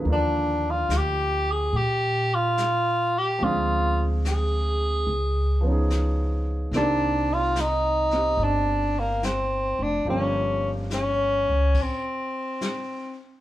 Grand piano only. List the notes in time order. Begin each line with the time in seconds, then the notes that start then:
Already playing: B4
0.00 D3 F3 A#3
0.07 D4 F4
3.38 F3 G#3 C4
3.43 D4 G#4
5.61 F3 B3
5.65 C#4 D#4
5.72 G#4
6.74 D#3 A#3 C4 G4 D5
8.13 C4 G4
10.06 F3 G3 A#3 C#4 G4